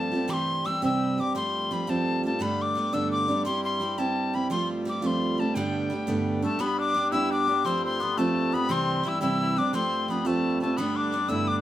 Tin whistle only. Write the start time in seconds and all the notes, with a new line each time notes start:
Already playing: A5
0.30 C6 D6
0.66 E6
0.85 E6
1.20 D6
1.36 C6
1.73 B5
1.90 A5
2.26 A5
2.42 B5
2.62 D6
2.94 E6
3.11 D6
3.45 C6
3.65 C6
3.98 A5
4.35 B5
4.51 C6
4.89 D6
5.03 C6 D6
5.40 A5
5.55 G5
6.45 A5
6.61 B5
6.80 D6
7.12 E6
7.32 D6
7.66 C6
7.86 C6
8.18 A5
8.54 B5
8.72 C6
9.09 E6
9.22 E6
9.59 D6
9.75 C6
10.10 B5
10.27 A5
10.62 A5
10.77 B5
10.97 D6
11.29 E6
11.48 D6